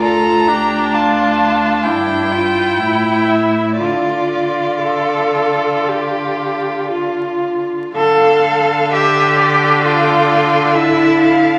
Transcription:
<<
  \new Staff \with { instrumentName = "Violin" } { \time 4/4 \key d \minor \tempo 4 = 63 bes''4 a''4 g''4. e''8 | d''2. r4 | f''4 g''2 a''4 | }
  \new Staff \with { instrumentName = "Violin" } { \time 4/4 \key d \minor a'8 g'8 f'4 d'8 e'4. | f'2.~ f'8 r8 | f''4 e''8 d''8 d''4 e''8 f''8 | }
  \new Staff \with { instrumentName = "Viola" } { \time 4/4 \key d \minor f'8 d'4. e'8 f'8 e'4 | f'4 a'4 g'4 f'4 | d1 | }
  \new Staff \with { instrumentName = "Cello" } { \time 4/4 \key d \minor d,2 g,4 a,4 | d1 | a'4 g'4 f'4 e'4 | }
>>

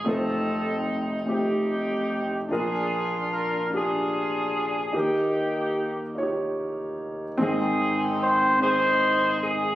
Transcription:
<<
  \new Staff \with { instrumentName = "Horn section" } { \time 6/8 \key aes \major \tempo 4. = 49 << { a'4 r8 g'4. | aes'4 bes'8 aes'4. | g'4. r4. | aes'4 c''8 c''4 aes'8 | } \\ { <c' ees'>4. <c' ees'>4. | <d' f'>4. <d' f'>4. | <bes ees'>4. r4. | <c' ees'>4. <ees' aes'>4. | } >> }
  \new Staff \with { instrumentName = "Grand piano" } { \time 6/8 \key aes \major <a c' ees' f' ces'' c''>4. <a c' ees' f' g'>4. | <d' f' bes'>4. <d' f' g' aes'>4. | <ees' g' bes'>4. <ees' f' g' des''>4. | <c' ees' aes'>4. <c' ees' aes'>4. | }
  \new Staff \with { instrumentName = "Grand piano" } { \clef bass \time 6/8 \key aes \major <f,, f,>2. | <bes,, bes,>2. | <ees, ees>2. | <aes,, aes,>2. | }
>>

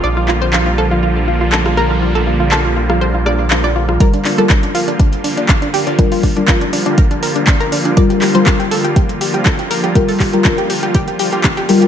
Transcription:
<<
  \new Staff \with { instrumentName = "Synth arpeggio sound" } { \time 4/4 \key g \minor \tempo 4 = 121 d''16 f'16 f'16 c''16 f'16 f'16 a'16 f'16 f'16 r16 f'16 f'16 a'16 f'16 bes'16 f'16 | f'16 a'16 f'16 f'16 a'16 f'16 f'16 f'16 c''16 f'16 d''16 f'16 f'16 d''16 f'16 f'16 | bes'16 d'16 d'16 a'16 d'16 d'16 f'16 d'16 d'16 r16 d'16 d'16 f'16 d'16 g'16 d'16 | d'16 f'16 d'16 d'16 f'16 d'16 d'16 d'16 bes'16 d'16 bes'16 d'16 d'16 bes'16 d'16 d'16 |
d''16 g'16 g'16 c''16 g'16 g'16 a'16 g'16 g'16 r16 g'16 g'16 a'16 g'16 bes'16 g'16 | g'16 a'16 g'16 g'16 a'16 g'16 g'16 g'16 g'16 g'16 g'16 g'16 g'16 g'16 g'16 g'16 | }
  \new Staff \with { instrumentName = "Synth stab" } { \time 4/4 \key g \minor r1 | r1 | <g f' bes'>8. <g f' bes'>2.~ <g f' bes'>16 | <g f' bes'>8. <g f' bes'>2.~ <g f' bes'>16 |
<g f' bes'>8. <g f' bes'>2.~ <g f' bes'>16 | <g f' bes'>8. <g f' bes'>2~ <g f' bes'>8. <g f' bes'>8 | }
  \new Staff \with { instrumentName = "Supersaw synth" } { \clef bass \time 4/4 \key g \minor <d f g bes f'>1~ | <d f g bes f'>1 | <d f g bes f'>1~ | <d f g bes f'>1~ |
<d f g bes f'>1~ | <d f g bes f'>1 | }
  \new Staff \with { instrumentName = "Sub bass" } { \clef bass \time 4/4 \key g \minor bes,,1~ | bes,,1 | r8 g,,16 g,,16 r16 g,,16 g,,16 g,,16 r16 g,,16 g,,16 g,,16 r16 g,,16 g,,16 g,,16 | r4 r16 g,,16 g,,16 g,,16 r16 g,,16 g,,16 g,,16 r16 g,,16 g,,16 g,,16 |
r8 g,,16 g,,16 r8 g,,16 g,,16 r16 g,,16 g,,16 g,,16 r16 g,,16 g,,16 g,,16 | r4 r16 g,,16 g,,16 g,,16 r16 g,,16 g,,16 g,,16 r16 g,,16 r8 | }
  \new DrumStaff \with { instrumentName = "Drums" } \drummode { \time 4/4 r8 hc8 hc4 r4 hc16 ss16 ss8 | r4 hc8. ss16 r8 ss8 hc8. ss16 | <hh bd>16 hh16 <hc hho>16 hh16 <hc hh bd>16 hh16 hho16 hh16 <hh bd>16 hh16 hho16 hh16 <hc hh bd>16 hh16 hho16 hh16 | <hh bd>16 hho16 <hho bd>16 hh16 <hc hh bd>16 hh16 hho16 hh16 <hh bd>16 hh16 hho16 hh16 <hc hh bd>16 hh16 hho16 hh16 |
<hh bd>16 hh16 <hc hho>16 hh16 <hc hh bd>16 hh16 hho16 hh16 <hh bd>16 hh16 hho16 hh16 <hc hh bd>16 hh16 hho16 hh16 | <hh bd>16 hho16 <hc hho bd>16 hh16 <hc hh bd>16 hh16 hho16 hh16 <hh bd>16 hh16 hho16 hh16 <hc hh bd>16 hh16 hho16 hh16 | }
>>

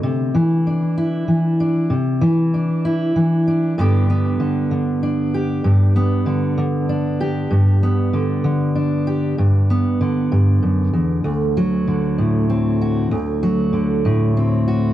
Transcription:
\new Staff \with { instrumentName = "Steel-string acoustic guitar" } { \clef bass \time 6/8 \key g \major \tempo 4. = 64 << { r4 d'8 e'4 d'8 | r4 d'8 e'4 d'8 | <d b d' g'>8 b4. d'8 g'8 | r8 b4. d'8 g'8 |
r8 b4. d'8 g'8 | r8 b2~ b8 | r8 fis4. c'8 fis'8 | r8 fis4. c'8 fis'8 | } \\ { <c d>8 e4. e4 | c8 e4. e4 | g,4 d8 d4. | g,4 d8 d4. |
g,4 d8 d4. | g,4 d8 g,8 fis,8 e,8 | d,4 d8 a,4. | d,4 d8 a,4. | } >> }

